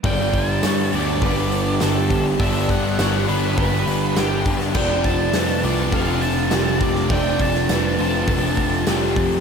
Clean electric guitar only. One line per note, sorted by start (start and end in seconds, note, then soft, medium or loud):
0.05 0.63 D5 medium
0.64 1.22 C#5 medium
1.22 1.81 B4 medium
1.81 2.40 G4 medium
2.41 2.99 D5 medium
3.00 3.58 C#5 medium
3.58 4.17 B4 medium
4.17 4.76 G4 medium
4.75 7.10 D5 medium
5.34 5.92 B4 medium
5.92 6.51 A4 medium
6.51 7.10 G4 medium
7.10 7.68 D5 medium
7.69 8.28 B4 medium
8.28 8.87 A4 medium
8.87 9.40 G4 medium